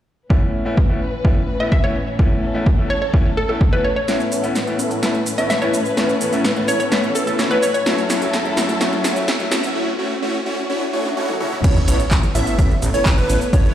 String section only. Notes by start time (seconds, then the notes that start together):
0.30 A2 E3 C#4 B4
2.19 A4
4.08 A2 E3 C#4 B4
7.86 F#2 F#3 E4 A4
11.64 A3 B3 C#5